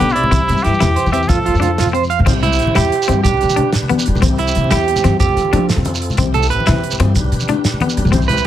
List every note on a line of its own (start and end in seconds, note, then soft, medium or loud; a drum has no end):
0.00 0.27 B1 medium
0.00 0.15 D3 medium
0.00 0.15 B3 medium
0.00 0.14 G4 loud
0.09 0.64 E4 medium
0.09 shekere soft
0.14 0.66 C3 medium
0.14 0.24 D5 medium
0.14 closed hi-hat soft
0.14 low conga soft
0.24 low conga medium
0.31 0.38 C2 medium
0.31 0.48 C4 medium
0.31 0.40 E4 medium
0.31 kick medium
0.31 closed hi-hat medium
0.31 high conga loud
0.31 low conga soft
0.31 shekere medium
0.48 0.55 G2 medium
0.48 0.57 E4 medium
0.48 closed hi-hat soft
0.48 low conga medium
0.48 shekere soft
0.57 shekere soft
0.63 0.72 G2 medium
0.63 1.12 E3 medium
0.63 0.73 E4 medium
0.63 1.12 G4 medium
0.63 snare soft
0.63 closed hi-hat soft
0.74 shekere soft
0.80 0.95 E2 loud
0.80 0.97 E4 medium
0.80 0.89 G4 medium
0.80 snare medium
0.80 closed hi-hat medium
0.80 high conga loud
0.80 low conga loud
0.80 shekere medium
0.96 1.05 C5 medium
0.96 closed hi-hat medium
0.96 shekere soft
1.06 1.26 E2 medium
1.06 low conga medium
1.06 shekere soft
1.12 1.31 E3 medium
1.12 1.29 C4 medium
1.12 1.30 G4 medium
1.12 1.21 E5 medium
1.12 closed hi-hat medium
1.12 low conga soft
1.12 shekere soft
1.22 shekere soft
1.28 1.36 F2 medium
1.28 1.95 F3 medium
1.28 1.37 F4 medium
1.28 1.94 A4 medium
1.28 kick medium
1.28 closed hi-hat medium
1.28 high conga medium
1.28 low conga soft
1.28 shekere medium
1.37 low conga medium
1.46 1.54 D2 medium
1.46 1.54 F4 medium
1.46 closed hi-hat soft
1.54 2.21 F2 medium
1.54 low conga soft
1.54 shekere soft
1.60 1.77 D4 medium
1.60 1.70 F4 medium
1.60 closed hi-hat soft
1.60 low conga medium
1.60 shekere soft
1.78 1.87 F4 medium
1.78 snare medium
1.78 closed hi-hat medium
1.78 high conga medium
1.78 low conga soft
1.78 shekere medium
1.85 low conga medium
1.85 shekere soft
1.93 2.10 C4 medium
1.93 2.03 C5 medium
1.93 closed hi-hat soft
2.03 low conga soft
2.03 shekere soft
2.10 2.19 F5 medium
2.10 closed hi-hat soft
2.19 2.26 A2 medium
2.19 low conga medium
2.25 2.60 C2 medium
2.25 2.43 C4 medium
2.25 3.23 E4 medium
2.25 5.17 G4 medium
2.25 3.23 C5 medium
2.25 kick medium
2.25 crash medium
2.25 high conga medium
2.25 shekere medium
2.43 2.73 E4 medium
2.43 closed hi-hat soft
2.43 low conga medium
2.52 shekere medium
2.59 2.67 A1 medium
2.59 closed hi-hat soft
2.59 shekere soft
2.67 high conga medium
2.75 2.90 E2 medium
2.75 2.92 E4 medium
2.75 3.21 G4 medium
2.75 snare medium
2.75 closed hi-hat medium
2.75 low conga medium
2.75 shekere medium
2.92 closed hi-hat medium
3.02 shekere medium
3.08 3.22 G2 medium
3.08 3.25 C4 medium
3.08 closed hi-hat soft
3.08 high conga medium
3.08 low conga soft
3.24 3.32 B1 medium
3.24 4.23 D4 medium
3.24 3.70 G4 medium
3.24 4.23 B4 medium
3.24 kick medium
3.24 closed hi-hat medium
3.24 shekere loud
3.34 low conga medium
3.41 3.56 B2 medium
3.41 closed hi-hat medium
3.41 low conga soft
3.41 shekere soft
3.49 high conga medium
3.49 shekere medium
3.56 3.73 D4 medium
3.56 closed hi-hat soft
3.56 low conga medium
3.73 snare medium
3.73 closed hi-hat medium
3.73 shekere loud
3.83 low conga medium
3.89 4.06 B3 medium
3.89 closed hi-hat soft
3.89 high conga medium
3.99 shekere medium
4.06 4.14 E1 medium
4.06 closed hi-hat soft
4.15 4.22 E1 medium
4.15 low conga medium
4.15 shekere soft
4.22 4.49 C2 medium
4.22 4.39 C4 medium
4.22 7.13 C4 medium
4.22 5.19 E4 medium
4.22 kick medium
4.22 closed hi-hat medium
4.22 high conga medium
4.22 shekere loud
4.38 4.69 E4 medium
4.38 closed hi-hat medium
4.48 shekere medium
4.55 4.69 C3 medium
4.55 closed hi-hat soft
4.55 shekere soft
4.64 high conga medium
4.71 4.99 E2 loud
4.71 4.88 E4 medium
4.71 5.16 G4 medium
4.71 snare loud
4.71 closed hi-hat medium
4.71 low conga medium
4.71 shekere loud
4.88 closed hi-hat medium
4.96 low conga medium
4.96 shekere medium
5.04 5.11 G2 medium
5.04 5.20 C4 medium
5.04 snare soft
5.04 closed hi-hat soft
5.04 high conga loud
5.04 low conga soft
5.04 shekere soft
5.20 5.27 F2 medium
5.20 6.17 F4 medium
5.20 5.66 G4 medium
5.20 6.17 A4 medium
5.20 kick medium
5.20 closed hi-hat medium
5.20 shekere medium
5.29 low conga medium
5.36 5.43 F3 medium
5.36 closed hi-hat soft
5.36 low conga soft
5.36 shekere soft
5.45 high conga medium
5.53 5.66 F3 loud
5.53 5.69 D4 medium
5.53 closed hi-hat soft
5.53 low conga medium
5.69 snare medium
5.69 closed hi-hat medium
5.69 shekere medium
5.76 6.10 F2 medium
5.76 low conga medium
5.85 closed hi-hat medium
5.85 high conga medium
5.95 shekere medium
6.02 closed hi-hat medium
6.10 low conga medium
6.10 shekere soft
6.17 6.51 C2 medium
6.17 6.35 C4 medium
6.17 7.15 E4 medium
6.17 7.14 G4 medium
6.17 kick medium
6.17 closed hi-hat medium
6.17 high conga loud
6.17 shekere medium
6.34 6.50 A4 medium
6.34 closed hi-hat soft
6.34 low conga medium
6.43 shekere medium
6.50 6.57 A1 medium
6.50 6.96 B4 medium
6.50 closed hi-hat medium
6.60 high conga medium
6.67 6.81 E2 loud
6.67 6.83 E4 medium
6.67 snare medium
6.67 closed hi-hat medium
6.67 low conga loud
6.67 shekere medium
6.83 closed hi-hat medium
6.91 low conga medium
6.91 shekere medium
7.00 7.13 G2 medium
7.00 7.16 C4 medium
7.00 closed hi-hat medium
7.00 high conga loud
7.00 low conga soft
7.15 7.22 B1 medium
7.15 8.13 D4 medium
7.15 8.47 G4 medium
7.15 8.12 B4 medium
7.15 kick medium
7.15 closed hi-hat medium
7.15 shekere medium
7.24 low conga medium
7.32 7.45 B2 medium
7.32 closed hi-hat soft
7.32 low conga soft
7.32 shekere soft
7.40 high conga medium
7.40 shekere medium
7.48 7.65 D4 medium
7.48 closed hi-hat soft
7.48 low conga medium
7.65 snare medium
7.65 closed hi-hat medium
7.65 shekere medium
7.74 low conga medium
7.81 7.98 B3 medium
7.81 closed hi-hat soft
7.81 high conga loud
7.90 shekere medium
7.97 8.04 E1 medium
7.97 closed hi-hat soft
8.05 8.12 E1 medium
8.05 low conga medium
8.05 shekere soft
8.12 8.40 C2 medium
8.12 8.29 C4 medium
8.12 8.47 E4 medium
8.12 8.47 C5 medium
8.12 kick medium
8.12 closed hi-hat medium
8.12 high conga loud
8.12 low conga soft
8.12 shekere medium
8.22 shekere soft
8.28 8.44 B4 medium
8.28 closed hi-hat soft
8.28 low conga medium
8.28 shekere soft
8.37 low conga soft
8.37 shekere medium